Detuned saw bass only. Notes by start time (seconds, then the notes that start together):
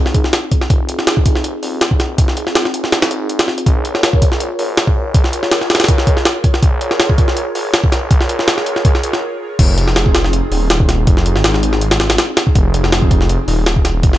Already playing: G#1
0.70 F1
1.63 D#1
2.18 F1
2.47 G#1
2.92 C2
3.11 G#1
3.66 A#1
4.59 G#1
5.15 A#1
5.43 C#2
6.63 A#1
7.55 G#1
8.11 A#1
8.39 C#2
9.59 F1
10.51 D#1
11.07 F1
11.35 G#1
12.55 F1
13.48 D#1
14.03 F1